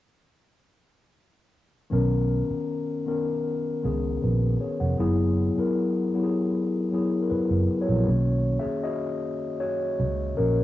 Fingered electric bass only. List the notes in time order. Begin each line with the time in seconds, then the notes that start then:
1.92 B1
2.50 muted fingered electric bass stroke
3.85 C#2
4.24 A#1
4.81 F1
5.00 F#1
5.58 muted fingered electric bass stroke
7.31 muted fingered electric bass stroke
7.51 F#1
7.89 A#1
8.08 B1
8.66 muted fingered electric bass stroke
10.00 C#2
10.39 A#1